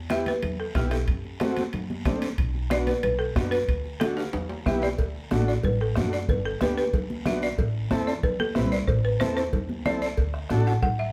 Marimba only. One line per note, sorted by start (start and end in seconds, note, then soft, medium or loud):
0.11 0.18 E5 loud
0.28 0.58 B4 medium
0.60 0.76 A4 medium
0.76 0.83 G4 medium
0.92 1.37 A4 medium
2.72 2.86 D5 loud
2.87 3.02 B4 medium
3.03 3.11 B4 medium
3.19 3.53 A4 medium
3.51 3.97 B4 medium
4.00 4.08 A4 medium
4.17 4.78 G4 medium
4.67 4.74 E5 medium
4.83 5.44 D5 medium
5.48 5.63 D5 medium
5.65 5.79 B4 medium
5.81 6.11 A4 medium
6.13 6.20 D5 medium
6.30 6.37 B4 medium
6.45 6.62 A4 medium
6.62 6.69 B4 medium
6.78 7.28 B4 medium
7.27 7.34 E5 medium
7.43 8.04 D5 medium
8.07 8.22 D5 medium
8.23 8.39 B4 medium
8.40 8.70 A4 loud
8.72 8.89 D5 medium
8.88 9.05 C5 medium
9.05 9.12 B4 medium
9.20 9.27 C5 loud
9.37 9.87 C5 medium
9.86 10.01 D5 loud
10.02 10.47 D5 medium
10.67 10.81 F#5 medium
10.83 10.98 F#5 loud
10.99 11.12 E5 medium